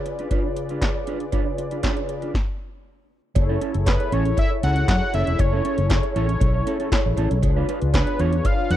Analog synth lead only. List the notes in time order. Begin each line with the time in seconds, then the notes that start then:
3.87 B4
4.13 C#5
4.39 E5
4.64 F#5
4.89 F#5
5.15 E5
5.40 C#5
6.16 C#5
7.95 B4
8.20 C#5
8.46 F5
8.71 F#5